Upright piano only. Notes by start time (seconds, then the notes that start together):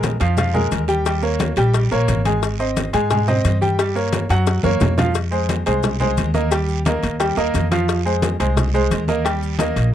Already playing: G#3 G#4 A#4
0.20 F3 F4 F5
0.38 F3 F4 F5
0.54 G#3 G#4 A#4
0.88 G3 G4 G5
1.06 G3 G4 G5
1.22 A#3 A#4 C#5
1.57 G3 G4 G5
1.91 A#3 A#4 C#5
2.25 G#3 G#4 G#5
2.59 C4 C5 D#5
2.93 G#3 G#4 G#5
3.11 G#3 G#4 G#5
3.28 C4 C5 D#5
3.61 G3 G4 G5
3.79 G3 G4 G5
3.95 A#3 A#4 C#5
4.30 F#3 F#4 F#5
4.63 A#3 A#4 C#5
4.97 F3 F4 F5
5.31 G#3 G#4 C5
5.66 G#3 G#4 C5
6.00 G#3 G#4 C5
6.34 A#3 A#4 D#5
6.51 G3 G4 G5
6.86 A#3 A#4 D#5
7.20 G3 G4 G5
7.37 A#3 A#4 D#5
7.71 F3 F4 F5
8.05 G#3 G#4 C5
8.40 G#3 G#4 C5
8.74 G#3 G#4 C5
9.08 A#3 A#4 D#5
9.25 G3 G4 G5
9.59 A#3 A#4 D#5